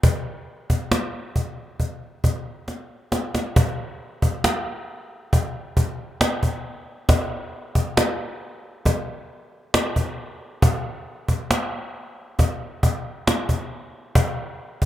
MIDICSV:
0, 0, Header, 1, 2, 480
1, 0, Start_track
1, 0, Tempo, 882353
1, 18, Time_signature, 4, 2, 24, 8
1, 8080, End_track
2, 0, Start_track
2, 0, Title_t, "Cajon"
2, 19, Note_on_c, 9, 36, 105
2, 73, Note_off_c, 9, 36, 0
2, 380, Note_on_c, 9, 36, 69
2, 434, Note_off_c, 9, 36, 0
2, 498, Note_on_c, 9, 38, 92
2, 552, Note_off_c, 9, 38, 0
2, 738, Note_on_c, 9, 36, 58
2, 792, Note_off_c, 9, 36, 0
2, 977, Note_on_c, 9, 36, 52
2, 1031, Note_off_c, 9, 36, 0
2, 1218, Note_on_c, 9, 36, 73
2, 1272, Note_off_c, 9, 36, 0
2, 1457, Note_on_c, 9, 38, 45
2, 1511, Note_off_c, 9, 38, 0
2, 1697, Note_on_c, 9, 38, 72
2, 1751, Note_off_c, 9, 38, 0
2, 1820, Note_on_c, 9, 38, 77
2, 1874, Note_off_c, 9, 38, 0
2, 1938, Note_on_c, 9, 36, 122
2, 1993, Note_off_c, 9, 36, 0
2, 2297, Note_on_c, 9, 36, 76
2, 2352, Note_off_c, 9, 36, 0
2, 2417, Note_on_c, 9, 38, 113
2, 2471, Note_off_c, 9, 38, 0
2, 2898, Note_on_c, 9, 36, 85
2, 2953, Note_off_c, 9, 36, 0
2, 3137, Note_on_c, 9, 36, 80
2, 3192, Note_off_c, 9, 36, 0
2, 3377, Note_on_c, 9, 38, 106
2, 3431, Note_off_c, 9, 38, 0
2, 3496, Note_on_c, 9, 36, 67
2, 3551, Note_off_c, 9, 36, 0
2, 3856, Note_on_c, 9, 36, 119
2, 3857, Note_off_c, 9, 36, 0
2, 3857, Note_on_c, 9, 36, 121
2, 3912, Note_off_c, 9, 36, 0
2, 4218, Note_on_c, 9, 36, 77
2, 4272, Note_off_c, 9, 36, 0
2, 4337, Note_on_c, 9, 38, 106
2, 4392, Note_off_c, 9, 38, 0
2, 4817, Note_on_c, 9, 36, 60
2, 4819, Note_off_c, 9, 36, 0
2, 4819, Note_on_c, 9, 36, 94
2, 4874, Note_off_c, 9, 36, 0
2, 5299, Note_on_c, 9, 38, 118
2, 5353, Note_off_c, 9, 38, 0
2, 5419, Note_on_c, 9, 36, 72
2, 5473, Note_off_c, 9, 36, 0
2, 5779, Note_on_c, 9, 36, 127
2, 5834, Note_off_c, 9, 36, 0
2, 6139, Note_on_c, 9, 36, 69
2, 6193, Note_off_c, 9, 36, 0
2, 6259, Note_on_c, 9, 38, 111
2, 6314, Note_off_c, 9, 38, 0
2, 6739, Note_on_c, 9, 36, 58
2, 6740, Note_off_c, 9, 36, 0
2, 6740, Note_on_c, 9, 36, 92
2, 6795, Note_off_c, 9, 36, 0
2, 6980, Note_on_c, 9, 36, 84
2, 7034, Note_off_c, 9, 36, 0
2, 7221, Note_on_c, 9, 38, 107
2, 7275, Note_off_c, 9, 38, 0
2, 7338, Note_on_c, 9, 36, 68
2, 7393, Note_off_c, 9, 36, 0
2, 7700, Note_on_c, 9, 36, 118
2, 7754, Note_off_c, 9, 36, 0
2, 8061, Note_on_c, 9, 36, 78
2, 8080, Note_off_c, 9, 36, 0
2, 8080, End_track
0, 0, End_of_file